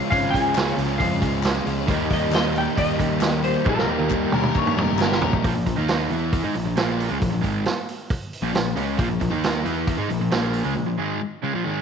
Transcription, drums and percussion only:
0.12 kick loud
0.12 open hi-hat medium
0.34 kick medium
0.34 open hi-hat medium
0.55 snare loud
0.55 clap medium
0.55 open hi-hat medium
0.78 open hi-hat medium
1.00 kick medium
1.00 open hi-hat medium
1.22 kick medium
1.22 open hi-hat medium
1.43 snare loud
1.43 clap loud
1.43 open hi-hat medium
1.56 snare soft
1.67 open hi-hat medium
1.88 kick loud
1.88 open hi-hat medium
2.11 kick medium
2.11 open hi-hat medium
2.32 snare loud
2.32 clap loud
2.32 open hi-hat medium
2.56 open hi-hat medium
2.78 kick medium
2.78 open hi-hat medium
3.00 kick medium
3.00 open hi-hat medium
3.21 snare loud
3.21 clap medium
3.21 open hi-hat medium
3.44 open hi-hat medium
3.65 kick loud
3.65 high tom medium
3.78 snare medium
3.99 high tom medium
4.10 kick medium
4.10 clap loud
4.32 mid tom medium
4.43 mid tom medium
4.55 kick medium
4.55 clap medium
4.67 mid tom medium
4.78 mid tom medium
4.99 snare loud
4.99 clap medium
5.12 snare medium
5.22 floor tom loud
5.33 kick medium
5.44 kick loud
5.44 open hi-hat medium
5.67 kick medium
5.67 open hi-hat medium
5.88 snare loud
5.88 open hi-hat medium
6.11 open hi-hat soft
6.33 kick loud
6.33 open hi-hat medium
6.55 open hi-hat medium
6.77 snare loud
6.77 open hi-hat medium
7.00 open hi-hat medium
7.22 kick loud
7.22 open hi-hat medium
7.44 kick medium
7.44 open hi-hat medium
7.66 snare loud
7.66 open hi-hat medium
7.89 open hi-hat medium
8.10 kick loud
8.10 open hi-hat medium
8.33 open hi-hat medium
8.55 snare loud
8.55 open hi-hat medium
8.77 open hi-hat medium
8.99 kick loud
8.99 open hi-hat medium
9.21 kick medium
9.21 open hi-hat medium
9.44 snare loud
9.44 open hi-hat medium
9.66 open hi-hat soft
9.87 kick loud
9.87 open hi-hat medium
10.10 open hi-hat medium
10.31 snare loud
10.31 open hi-hat medium
10.54 open hi-hat medium

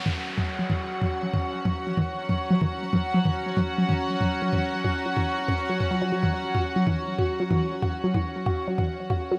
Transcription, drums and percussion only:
0.06 mid tom medium
0.38 mid tom medium
0.70 mid tom medium
1.02 mid tom medium
1.34 mid tom medium
1.65 mid tom medium
1.97 mid tom medium
2.29 mid tom medium
2.61 mid tom medium
2.93 mid tom medium
3.25 mid tom medium
3.57 mid tom medium
3.89 mid tom medium
4.21 mid tom medium
4.53 mid tom medium
4.84 mid tom medium
5.16 mid tom medium
5.48 mid tom medium
5.80 mid tom medium
6.23 mid tom medium
6.55 mid tom medium
6.87 mid tom medium
7.19 mid tom medium
7.51 mid tom medium
7.82 mid tom medium
8.14 mid tom medium
8.46 mid tom medium
8.78 mid tom medium
9.10 mid tom medium

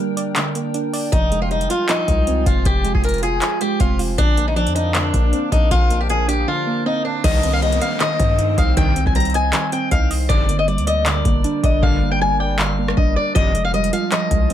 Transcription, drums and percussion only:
0.17 closed hi-hat medium
0.36 clap loud
0.36 closed hi-hat medium
0.55 closed hi-hat medium
0.74 closed hi-hat medium
0.94 open hi-hat medium
1.13 kick loud
1.13 closed hi-hat medium
1.32 closed hi-hat medium
1.51 closed hi-hat soft
1.61 closed hi-hat medium
1.70 closed hi-hat medium
1.89 clap loud
1.89 closed hi-hat medium
2.08 kick medium
2.08 closed hi-hat medium
2.27 closed hi-hat medium
2.46 kick loud
2.46 closed hi-hat medium
2.65 kick loud
2.65 closed hi-hat medium
2.85 closed hi-hat medium
2.95 kick medium
3.04 closed hi-hat medium
3.09 closed hi-hat medium
3.14 closed hi-hat soft
3.18 closed hi-hat soft
3.23 closed hi-hat medium
3.42 clap loud
3.42 closed hi-hat medium
3.61 closed hi-hat medium
3.80 kick medium
3.80 closed hi-hat medium
3.99 open hi-hat medium
4.18 kick loud
4.18 closed hi-hat medium
4.37 closed hi-hat medium
4.57 closed hi-hat soft
4.67 closed hi-hat medium
4.76 closed hi-hat medium
4.95 clap loud
4.95 closed hi-hat medium
5.14 kick medium
5.14 closed hi-hat medium
5.33 closed hi-hat medium
5.52 kick loud
5.52 closed hi-hat medium
5.71 kick loud
5.71 closed hi-hat medium
5.91 closed hi-hat medium
6.09 closed hi-hat medium
6.29 closed hi-hat medium
7.24 kick loud
7.24 closed hi-hat medium
7.24 crash loud
7.43 closed hi-hat medium
7.62 closed hi-hat soft
7.72 closed hi-hat medium
7.82 closed hi-hat medium
8.00 clap loud
8.00 closed hi-hat medium
8.20 kick medium
8.20 closed hi-hat medium
8.39 closed hi-hat medium
8.58 kick loud
8.58 closed hi-hat medium
8.77 kick loud
8.77 closed hi-hat medium
8.96 closed hi-hat medium
9.06 kick medium
9.15 closed hi-hat medium
9.20 closed hi-hat medium
9.25 closed hi-hat soft
9.30 closed hi-hat soft
9.34 closed hi-hat medium
9.53 clap loud
9.53 closed hi-hat medium
9.72 closed hi-hat medium
9.91 kick loud
9.91 closed hi-hat medium
10.11 open hi-hat medium
10.30 kick loud
10.30 closed hi-hat medium
10.49 closed hi-hat medium
10.68 closed hi-hat soft
10.78 closed hi-hat medium
10.87 closed hi-hat medium
11.06 clap loud
11.06 closed hi-hat medium
11.25 kick medium
11.25 closed hi-hat medium
11.44 closed hi-hat medium
11.63 kick loud
11.63 closed hi-hat medium
11.83 kick loud
12.59 clap loud
12.88 cross-stick loud
12.97 kick loud
13.36 kick loud
13.36 closed hi-hat medium
13.55 closed hi-hat medium
13.74 closed hi-hat soft
13.84 closed hi-hat medium
13.93 closed hi-hat medium
14.12 clap loud
14.12 closed hi-hat medium
14.31 kick medium
14.31 closed hi-hat medium
14.50 closed hi-hat medium

